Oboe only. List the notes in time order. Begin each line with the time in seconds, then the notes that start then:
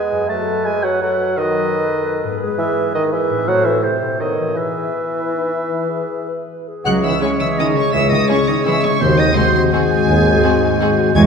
Already playing: G#5
0.29 A5
0.65 G#5
0.84 F#5
1.02 F#5
1.37 D#5
2.59 E5
2.95 D#5
3.13 E5
3.48 F#5
3.64 E5
3.83 C5
4.21 D#5
4.57 E5
6.85 C#5
7.22 C#5
7.94 C#5
8.30 C#5
8.66 C#5
9.01 C5
9.36 C5
9.73 C5
11.15 C#5